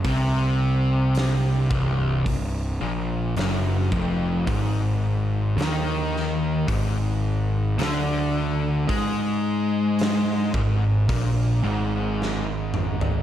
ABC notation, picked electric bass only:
X:1
M:4/4
L:1/8
Q:1/4=54
K:Ablyd
V:1 name="Picked electric bass" clef=bass
C,,3 C,,, C,,, B,,, ^F,,, =F,,, | A,,,2 E,,2 A,,,2 D,,2 | A,,3 A,,, B,,, A,,,3 |]